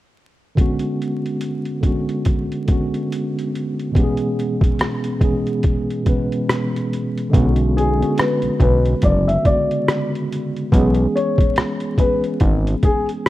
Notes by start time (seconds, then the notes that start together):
0.55 D3 G#3 B3, kick, closed hi-hat
0.60 C#4 F#4
0.79 closed hi-hat
1.02 closed hi-hat
1.26 closed hi-hat
1.41 closed hi-hat
1.65 closed hi-hat
1.81 D3 G#3 B3, kick, closed hi-hat
1.85 C#4 F#4
2.09 closed hi-hat
2.25 kick, closed hi-hat
2.52 closed hi-hat
2.66 D3 G#3 B3, kick, closed hi-hat
2.71 C#4 F#4
2.94 closed hi-hat
3.12 closed hi-hat
3.39 closed hi-hat
3.55 closed hi-hat
3.79 closed hi-hat
3.92 B2 E3 G#3 B3, kick
3.96 C#4 G4, closed hi-hat
4.04 G#4
4.17 closed hi-hat
4.40 closed hi-hat
4.61 kick, closed hi-hat
4.79 cross-stick, closed hi-hat
5.04 closed hi-hat
5.19 B2 E3 G#3 B3, kick, closed hi-hat
5.23 C#4 G#4
5.47 closed hi-hat
5.63 kick, closed hi-hat
5.90 closed hi-hat
6.03 B2 E3 G#3, kick, closed hi-hat
6.07 B3 C#4 B4
6.32 closed hi-hat
6.49 cross-stick, closed hi-hat
6.76 closed hi-hat
6.93 closed hi-hat
7.18 closed hi-hat
7.30 D3 G#3 B3, kick
7.34 B1 C#4 F#4, closed hi-hat
7.56 closed hi-hat
7.77 G#4, closed hi-hat
7.98 D3 G#3 B3
8.02 C#4 F#4, closed hi-hat
8.18 B4, cross-stick, closed hi-hat
8.42 B1, closed hi-hat
8.60 B1 B4, kick, closed hi-hat
8.85 closed hi-hat
9.02 F#1 D5, kick, closed hi-hat
9.28 E5, closed hi-hat
9.43 D3 G#3 B3 D5, kick, closed hi-hat
9.47 C#3 F#4
9.71 closed hi-hat
9.88 cross-stick, closed hi-hat
10.15 closed hi-hat
10.32 closed hi-hat
10.56 closed hi-hat
10.72 B1 E3 G#3 B3, kick, closed hi-hat
10.77 C#4 G#4
10.95 closed hi-hat
11.16 C#5, closed hi-hat
11.38 kick, closed hi-hat
11.56 cross-stick, closed hi-hat
11.80 closed hi-hat
11.97 E3 G#3 B3 B4, kick, closed hi-hat
12.02 C#4 G#4
12.24 closed hi-hat
12.40 G#1, kick, closed hi-hat
12.67 closed hi-hat
12.83 G#4, kick, closed hi-hat
13.09 closed hi-hat